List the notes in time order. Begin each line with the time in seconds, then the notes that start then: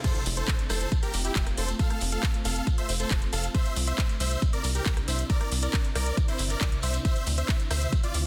0.04 A3 C4 F4 A4 C5, kick, closed hi-hat, crash, impact, shekere
0.15 closed hi-hat, shekere
0.26 F1, open hi-hat, shekere
0.37 A4 C5, closed hi-hat, shekere
0.48 kick, cross-stick, clap, closed hi-hat, shekere
0.59 closed hi-hat, shekere
0.69 F1 A4 C5, cross-stick, open hi-hat, shekere
0.81 closed hi-hat, shekere
0.92 kick, closed hi-hat, shekere
1.02 G4 A#4, closed hi-hat, shekere
1.14 F1, open hi-hat, shekere
1.25 E4 G4, closed hi-hat, shekere
1.36 F1, kick, clap, closed hi-hat, shekere
1.47 cross-stick, closed hi-hat, shekere
1.57 F1 A4 C5, open hi-hat, shekere
1.68 closed hi-hat, shekere
1.79 A4 F5, kick, closed hi-hat, shekere
1.90 cross-stick, closed hi-hat, shekere
2.00 F1, open hi-hat, shekere
2.12 A4 F5, closed hi-hat, shekere
2.23 kick, cross-stick, clap, closed hi-hat, shekere
2.34 closed hi-hat, shekere
2.45 F1 A4 F5, open hi-hat, shekere
2.56 closed hi-hat, shekere
2.67 kick, closed hi-hat, shekere
2.78 C5 E5, closed hi-hat, shekere
2.89 F1, open hi-hat, shekere
2.99 A4 C5, closed hi-hat, shekere
3.11 F1, kick, clap, closed hi-hat, shekere
3.22 closed hi-hat, shekere
3.33 F1 A4 F5, open hi-hat, shekere
3.43 closed hi-hat, shekere
3.55 C3 D4 E4 C5 E5, kick, closed hi-hat, shekere
3.66 closed hi-hat, shekere
3.76 C2, open hi-hat, shekere
3.87 C5 E5, closed hi-hat, shekere
3.98 kick, cross-stick, clap, closed hi-hat, shekere
4.09 closed hi-hat, shekere
4.20 C2 C5 E5, open hi-hat, shekere
4.31 closed hi-hat, shekere
4.42 kick, closed hi-hat, shekere
4.53 A#4 D5, closed hi-hat, shekere
4.64 C2, open hi-hat, shekere
4.74 G4 A#4, closed hi-hat, shekere
4.86 C2, kick, clap, closed hi-hat, shekere
4.97 cross-stick, closed hi-hat, shekere
5.08 C2 C5 E5, open hi-hat, shekere
5.19 closed hi-hat, shekere
5.30 A#4 D5, kick, closed hi-hat, shekere
5.41 cross-stick, closed hi-hat, shekere
5.52 C2, open hi-hat, shekere
5.62 A#4 D5, closed hi-hat, shekere
5.73 kick, cross-stick, clap, closed hi-hat, shekere
5.83 closed hi-hat, shekere
5.95 C2 A#4 D5, cross-stick, open hi-hat, shekere
6.06 closed hi-hat, shekere
6.17 kick, closed hi-hat, shekere
6.28 E4 C5, closed hi-hat, shekere
6.38 G1, open hi-hat, shekere
6.50 A#4 D5, closed hi-hat, shekere
6.61 C2, kick, clap, closed hi-hat, shekere
6.72 closed hi-hat, shekere
6.82 C2 C5 E5, open hi-hat, shekere
6.94 closed hi-hat, shekere
7.05 D3 A3 F4 C5 E5, kick, closed hi-hat, shekere
7.16 closed hi-hat, shekere
7.27 D2, open hi-hat, shekere
7.37 C5 E5, closed hi-hat, shekere
7.49 kick, cross-stick, clap, closed hi-hat, shekere
7.60 closed hi-hat, shekere
7.71 D2 C5 E5, cross-stick, open hi-hat, shekere
7.82 closed hi-hat, shekere
7.92 kick, closed hi-hat, shekere
8.03 F4 D5, closed hi-hat, shekere
8.14 D2, open hi-hat, shekere